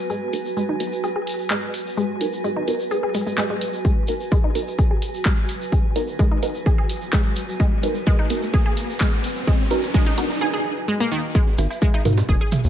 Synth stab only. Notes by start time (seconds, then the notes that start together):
0.33 B3 D#4 F#4 A#4
0.80 B3 D#4 F#4 A#4
2.21 B3 D#4 F#4 A#4
2.68 B3 D#4 F#4 A#4
4.08 B3 D#4 F#4 A#4
4.55 B3 D#4 F#4 A#4
5.96 B3 D#4 F#4 A#4
6.43 B3 D#4 F#4 A#4
7.83 B3 D#4 F#4 A#4
8.30 B3 D#4 F#4 A#4
9.71 B3 D#4 F#4 A#4
10.18 B3 D#4 F#4 A#4
11.58 B3 D#4 F#4 A#4
12.05 B3 D#4 F#4 A#4